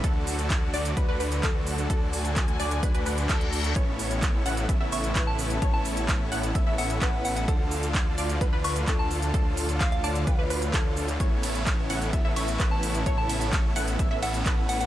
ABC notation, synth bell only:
X:1
M:4/4
L:1/16
Q:1/4=129
K:A
V:1 name="Synth bell"
z16 | z16 | z8 z2 c'2 z a3- | a a2 z6 z f4 f f |
z8 z2 c'2 z a3- | a z3 =f f a3 z6 z | z8 z2 c'2 z a3- | a a2 z6 z f4 f f |]